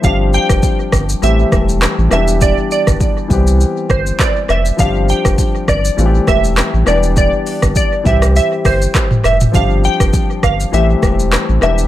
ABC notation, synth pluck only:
X:1
M:4/4
L:1/8
Q:"Swing 16ths" 1/4=101
K:Am
V:1 name="Synth pluck"
f g3 e3 e | d d4 c d e | f g2 d2 e2 d | d2 d e e c2 e |
f g2 f e3 e |]